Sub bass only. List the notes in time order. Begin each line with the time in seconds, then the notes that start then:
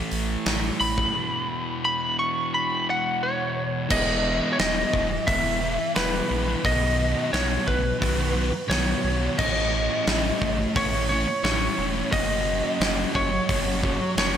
0.12 A1
0.46 A1
0.80 A1
3.91 E1
4.59 E1
4.94 E1
5.28 E1
5.97 E1
6.30 A#1
6.65 B1
7.33 B1
7.68 B1
8.02 B1
8.70 B1
9.04 B1
9.39 A1
10.07 A1
10.42 A1
10.76 A1
11.44 A1
11.78 E1
12.13 F#1
12.80 F#1
13.15 F#1
13.49 F#1
14.17 F#1